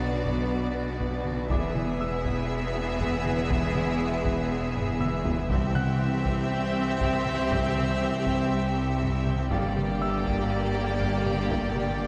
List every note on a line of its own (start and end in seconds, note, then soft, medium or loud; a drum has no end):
0.00 1.47 B1 medium
0.00 1.51 B1 medium
0.00 1.47 B2 medium
0.00 1.46 F#3 medium
0.00 1.47 F#3 medium
0.00 1.47 B3 medium
0.00 1.47 D4 medium
0.00 0.16 D4 medium
0.00 1.47 F#4 medium
0.00 1.53 F#4 soft
0.00 0.96 G#4 soft
0.00 1.47 B4 medium
0.00 1.46 D5 medium
0.00 1.47 D5 medium
0.00 0.96 G#5 medium
0.25 0.40 B3 medium
0.25 taiko medium
0.75 0.90 B4 medium
1.00 1.15 B3 loud
1.00 taiko medium
1.25 1.40 B4 medium
1.25 taiko mid medium
1.49 5.52 E1 medium
1.49 5.50 E1 medium
1.49 5.51 E2 medium
1.49 1.65 E3 medium
1.49 5.34 G#3 loud
1.49 5.51 G#3 medium
1.49 5.46 B3 medium
1.49 5.34 B3 medium
1.49 5.47 G#4 medium
1.49 5.47 B4 medium
1.49 2.97 D5 soft
1.49 5.48 E5 medium
1.49 5.47 E5 medium
1.49 2.97 D6 medium
1.49 taiko loud
1.75 1.90 E4 medium
1.75 taiko mid medium
2.00 2.15 G#3 medium
2.00 3.47 E6 medium
2.25 2.40 E3 medium
2.25 taiko medium
2.75 2.91 E4 medium
3.00 3.16 E3 loud
3.00 taiko medium
3.26 3.41 E4 medium
3.26 taiko mid medium
3.50 3.66 E3 medium
3.50 taiko loud
3.75 3.91 E4 medium
3.75 taiko mid medium
4.02 4.16 G#3 medium
4.25 4.41 E3 loud
4.25 taiko medium
4.75 4.91 E4 medium
4.75 taiko low-mid medium
5.00 5.16 E3 loud
5.00 6.47 E6 medium
5.00 taiko mid loud
5.25 5.41 E4 medium
5.25 taiko low loud
5.49 9.47 C2 medium
5.49 9.52 C2 medium
5.49 9.47 C2 loud
5.49 5.66 C3 medium
5.49 9.47 E3 loud
5.49 9.49 G3 medium
5.49 9.50 C4 medium
5.49 9.47 C4 medium
5.49 9.47 C4 loud
5.49 9.49 G4 medium
5.49 9.47 G4 medium
5.49 9.46 E5 medium
5.49 9.47 E5 medium
5.49 taiko loud
5.75 5.91 C4 medium
5.75 7.22 F#5 medium
5.75 7.21 F#6 medium
5.75 taiko mid medium
6.01 6.16 E3 medium
6.26 6.41 C3 medium
6.26 taiko medium
6.75 6.91 C4 medium
7.01 7.16 C3 loud
7.01 taiko medium
7.26 7.42 C4 medium
7.26 taiko mid medium
7.51 7.67 C3 loud
7.51 8.97 G6 medium
7.51 taiko loud
7.76 7.91 C4 medium
7.76 taiko mid medium
8.02 8.16 E3 medium
8.27 8.41 C3 loud
8.27 taiko medium
8.77 8.91 C4 medium
9.01 9.16 C3 loud
9.01 taiko medium
9.26 9.41 C4 medium
9.26 taiko mid medium
9.50 12.07 G1 medium
9.50 12.07 G2 medium
9.50 12.07 D3 medium
9.50 12.07 G3 medium
9.50 9.66 G3 loud
9.50 12.07 A#3 medium
9.50 12.07 G4 medium
9.50 12.07 D5 medium
9.50 10.97 F5 medium
9.50 taiko loud
9.76 9.91 G4 medium
9.76 taiko mid medium
10.01 10.16 A#3 medium
10.01 11.47 E5 soft
10.01 11.47 E6 medium
10.26 10.41 G3 loud
10.26 taiko medium
10.76 10.91 G4 medium
11.00 11.16 G3 loud
11.00 taiko medium
11.26 11.41 G4 medium
11.26 12.07 D6 soft
11.26 taiko mid medium
11.51 11.66 G3 loud
11.51 taiko loud
11.75 11.90 G4 medium
11.75 taiko mid medium
12.01 12.07 A#3 medium